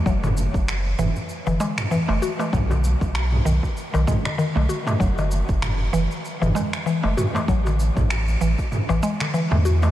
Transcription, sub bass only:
X:1
M:4/4
L:1/16
Q:"Swing 16ths" 1/4=97
K:F#dor
V:1 name="Sub bass" clef=bass
F,,,3 F,,,3 F,,, z2 F,,, z3 F,,, z2 | B,,,3 B,,,3 B,,, z2 B,,, z3 B,,, z2 | F,,,3 F,,,3 F,,, z2 F,,, z3 F,,, z2 | A,,,3 A,,,3 A,,, z2 A,,, z3 E,,3 |]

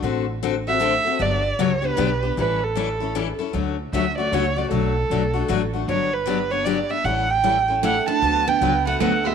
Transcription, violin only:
X:1
M:3/4
L:1/8
Q:"Swing" 1/4=154
K:D
V:1 name="Violin"
z3 e3 | d2 c B2 z | B A4 z | z2 e d c d |
A4- A z | c B2 c d e | f g2 z f a- | a g2 f f e |]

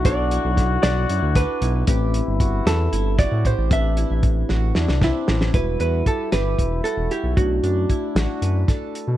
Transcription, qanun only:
X:1
M:7/8
L:1/8
Q:1/4=114
K:Em
V:1 name="Qanun"
D E2 F E D E | G2 F2 E F G | D E2 F E D E | E F G G2 F E- |
E D E F B A2 |]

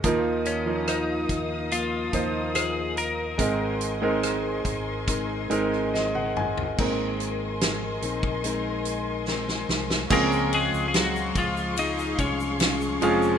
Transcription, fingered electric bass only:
X:1
M:4/4
L:1/16
Q:1/4=72
K:Db
V:1 name="Fingered electric bass" clef=bass
E,,6 E,,4 E,,6 | A,,,6 A,,,4 A,,,6 | A,,,6 B,,,8 C,,2 | D,,3 D,,3 D,,4 C,,4 F,,,2 |]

